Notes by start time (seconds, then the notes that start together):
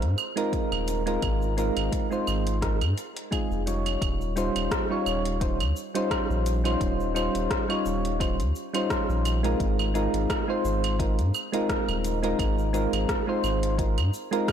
0.02 G#2, closed hi-hat
0.18 claves, shaker
0.36 G#3 C4 D#4 F4 A#4, closed hi-hat, shaker
0.53 kick, closed hi-hat, shaker
0.72 D#1, claves
0.88 closed hi-hat, shaker
1.06 G#3 C4 D#4 F4 A#4, closed hi-hat, shaker
1.22 G#1, kick, closed hi-hat, claves, shaker
1.42 shaker
1.57 G#3 C4 D#4 F4 A#4, closed hi-hat, shaker
1.77 G#1, closed hi-hat, claves, shaker
1.92 kick, closed hi-hat, shaker
2.11 G#3 C4 D#4 F4 C5, shaker
2.27 G#1, claves, shaker
2.47 closed hi-hat, shaker
2.61 G#3 C4 D#4 F4 A#4, kick, cross-stick, closed hi-hat, shaker
2.81 G#2, closed hi-hat, claves, shaker
2.98 closed hi-hat, shaker
3.17 closed hi-hat, shaker
3.31 G#3 C4 D#4 F4 G#4, kick, closed hi-hat, claves, shaker
3.51 F1, shaker
3.66 G3 C#4 D#4 F4 C#5, closed hi-hat, shaker
3.86 closed hi-hat, claves, shaker
4.02 D#1, kick, closed hi-hat, claves, shaker
4.21 shaker
4.36 G3 C#4 D#4 F4 C5, closed hi-hat, shaker
4.55 D#1, closed hi-hat, claves, shaker
4.71 kick, cross-stick, closed hi-hat, shaker
4.90 G3 C#4 D#4 F4 C#5
5.06 D#1, claves, shaker
5.25 closed hi-hat, shaker
5.40 G3 C#4 D#4 F4 C5, kick, closed hi-hat, shaker
5.60 D#2, closed hi-hat, claves, shaker
5.76 shaker
5.94 G3 C#4 D#4 F4 C5, closed hi-hat, shaker
6.11 kick, cross-stick, closed hi-hat, claves, shaker
6.30 A#1, shaker
6.46 closed hi-hat, shaker
6.64 G3 C#4 D#4 F4 C5, closed hi-hat, claves, shaker
6.81 D#1, kick, closed hi-hat, shaker
7.00 shaker
7.14 G3 C#4 D#4 F4 C5, closed hi-hat, claves, shaker
7.35 D#1, closed hi-hat, shaker
7.51 kick, cross-stick, closed hi-hat, shaker
7.69 G3 C#4 D#4 F4 C#5, claves
7.86 D#1, shaker
8.05 closed hi-hat, shaker
8.19 G3 C#4 D#4 F4 C5, kick, closed hi-hat, claves, shaker
8.39 D#2, closed hi-hat, shaker
8.56 shaker
8.73 G3 C#4 D#4 F4 C5, closed hi-hat, claves, shaker
8.90 kick, cross-stick, closed hi-hat, shaker
9.09 A#1, shaker
9.25 closed hi-hat, claves, shaker
9.43 G#3 C4 D#4 F4 A#4, closed hi-hat, shaker
9.60 G#1, kick, closed hi-hat, shaker
9.79 claves, shaker
9.94 G#3 C4 D#4 F4 A#4, closed hi-hat, shaker
10.14 G#1, closed hi-hat, shaker
10.30 kick, cross-stick, closed hi-hat, claves, shaker
10.48 G#3 C4 D#4 F4 C5
10.65 G#1, shaker
10.84 closed hi-hat, claves, shaker
10.99 G#3 C4 D#4 F4 A#4, kick, closed hi-hat, shaker
11.18 G#2, closed hi-hat, shaker
11.34 claves, shaker
11.52 G#3 C4 D#4 F4 A#4, closed hi-hat, shaker
11.69 kick, cross-stick, closed hi-hat, shaker
11.88 D#1, claves, shaker
12.04 closed hi-hat, shaker
12.23 G#3 C4 D#4 F4 A#4, closed hi-hat, shaker
12.39 G#1, kick, closed hi-hat, claves, shaker
12.58 shaker
12.73 G#3 C4 D#4 F4 A#4, closed hi-hat, shaker
12.93 G#1, closed hi-hat, claves, shaker
13.09 kick, cross-stick, closed hi-hat, shaker
13.27 G#3 C4 D#4 F4 C5
13.44 G#1, claves, shaker
13.63 closed hi-hat, shaker
13.77 G#3 C4 D#4 F4 A#4, kick, closed hi-hat, shaker
13.98 G#2, closed hi-hat, claves, shaker
14.14 shaker
14.31 G#3 C4 D#4 F4 A#4, closed hi-hat, shaker
14.48 kick, cross-stick, closed hi-hat, claves, shaker